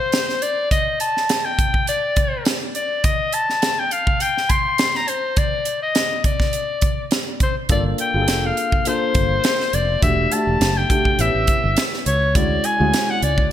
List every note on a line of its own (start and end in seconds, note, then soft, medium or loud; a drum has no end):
0.00 0.43 C5 medium
0.12 snare medium
0.12 closed hi-hat medium
0.29 snare soft
0.42 0.71 D5 medium
0.42 closed hi-hat medium
0.71 0.98 D#5 medium
0.71 kick medium
0.71 closed hi-hat medium
1.00 1.47 A5 medium
1.00 closed hi-hat medium
1.17 snare soft
1.29 snare medium
1.29 closed hi-hat medium
1.45 1.88 G5 medium
1.59 kick medium
1.59 closed hi-hat medium
1.74 kick medium
1.87 2.45 D5 medium
1.87 closed hi-hat medium
2.16 kick medium
2.16 closed hi-hat medium
2.45 snare loud
2.45 closed hi-hat medium
2.75 3.06 D5 medium
2.75 closed hi-hat medium
3.04 3.35 D#5 medium
3.04 kick loud
3.04 closed hi-hat medium
3.33 3.81 A5 medium
3.33 closed hi-hat medium
3.49 snare soft
3.62 snare loud
3.62 closed hi-hat medium
3.79 3.94 G5 medium
3.91 4.23 F5 medium
3.91 closed hi-hat medium
4.07 kick medium
4.20 4.52 G5 loud
4.20 closed hi-hat medium
4.37 snare soft
4.49 4.97 C6 loud
4.49 kick medium
4.49 closed hi-hat medium
4.78 snare loud
4.78 closed hi-hat medium
4.95 5.10 A#5 medium
4.95 snare soft
5.08 5.40 C5 medium
5.08 closed hi-hat medium
5.37 5.82 D5 medium
5.37 kick loud
5.37 closed hi-hat medium
5.65 closed hi-hat medium
5.82 6.22 D#5 medium
5.95 snare loud
5.95 closed hi-hat medium
6.24 7.10 D5 medium
6.24 kick medium
6.24 closed hi-hat medium
6.40 kick medium
6.40 snare soft
6.53 closed hi-hat medium
6.81 kick medium
6.81 closed hi-hat medium
7.11 snare loud
7.11 closed hi-hat medium
7.40 7.55 C5 medium
7.40 kick medium
7.40 closed hi-hat medium
7.69 7.93 G1 medium
7.69 7.98 A#3 medium
7.69 7.98 D4 medium
7.69 7.98 F4 medium
7.69 7.98 A4 medium
7.69 7.84 D5 medium
7.69 kick loud
7.69 closed hi-hat medium
7.98 8.47 G5 medium
7.98 closed hi-hat medium
8.14 8.28 G1 medium
8.14 8.60 A#3 medium
8.14 8.60 D4 medium
8.14 8.61 F4 medium
8.14 8.21 G#4 medium
8.21 8.64 A4 medium
8.28 8.51 F1 medium
8.28 snare medium
8.28 closed hi-hat medium
8.46 8.89 F5 medium
8.57 closed hi-hat medium
8.72 kick medium
8.85 9.62 A#3 medium
8.85 9.62 D4 soft
8.85 9.63 F4 medium
8.85 9.63 A4 medium
8.85 9.76 C5 medium
8.85 closed hi-hat medium
9.14 9.38 G1 medium
9.14 kick medium
9.14 closed hi-hat medium
9.44 snare loud
9.44 closed hi-hat medium
9.60 snare soft
9.73 9.96 F1 medium
9.73 10.02 D5 medium
9.73 closed hi-hat medium
10.02 10.25 E1 medium
10.02 10.22 A3 medium
10.02 10.22 D4 medium
10.02 10.22 F#4 medium
10.02 10.22 G4 medium
10.02 10.34 E5 medium
10.02 kick loud
10.02 closed hi-hat medium
10.31 10.70 A3 medium
10.31 10.70 D4 medium
10.31 10.70 F#4 medium
10.31 10.70 G4 medium
10.31 10.79 A5 medium
10.31 closed hi-hat medium
10.47 10.58 E1 medium
10.61 10.84 F#1 medium
10.61 snare loud
10.61 closed hi-hat medium
10.77 11.22 G5 medium
10.90 11.19 A3 medium
10.90 11.19 D4 medium
10.90 11.19 F#4 medium
10.90 11.18 G4 medium
10.90 kick medium
10.90 closed hi-hat medium
11.05 kick medium
11.18 11.31 A1 medium
11.18 12.12 B3 medium
11.18 12.12 C#4 medium
11.18 12.13 E4 medium
11.18 12.13 G4 medium
11.18 11.80 E5 medium
11.18 closed hi-hat medium
11.35 11.45 A1 medium
11.47 kick medium
11.47 closed hi-hat medium
11.64 11.74 G1 medium
11.77 snare loud
11.77 closed hi-hat medium
11.94 snare soft
12.06 12.35 C#2 medium
12.06 12.37 C#5 medium
12.06 closed hi-hat medium
12.35 12.58 D2 medium
12.35 12.63 G#3 medium
12.35 12.63 C#4 medium
12.35 12.64 E4 medium
12.35 12.64 F#4 medium
12.35 12.67 D5 medium
12.35 kick loud
12.35 closed hi-hat medium
12.64 13.12 G#5 loud
12.64 closed hi-hat medium
12.79 12.91 D2 medium
12.79 13.26 G#3 medium
12.79 13.26 C#4 medium
12.79 13.26 E4 medium
12.79 13.27 F#4 medium
12.94 snare medium
12.94 closed hi-hat medium
13.10 13.23 F#5 medium
13.22 13.45 C#2 medium
13.22 13.50 D5 medium
13.22 closed hi-hat medium
13.38 kick medium